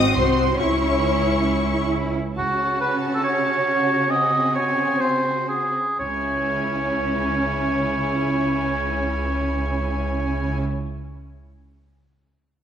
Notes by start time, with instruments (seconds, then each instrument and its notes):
Already playing: double bass section G#1, viola section C4 F#4, cello section C4, violin section D#5 D#6
0.15 double bass section C2, viola section C4 F#4, violin section C5 C6
0.60 double bass section C#2, viola section C#4 E4, cello section E4, violin section C#5 C#6
2.37 double bass section C#2, cello section C#3, viola section C#4, oboe F#4, violin section F#4 A5
2.81 oboe B4
3.14 oboe A4
3.23 oboe C#5
4.10 viola section C4, oboe D#5, violin section G#5
4.55 oboe C#5
5.01 oboe C5
5.49 oboe G#4
5.99 double bass section C#2, cello section C#3, viola section C#4, violin section E4 G#5, oboe C#5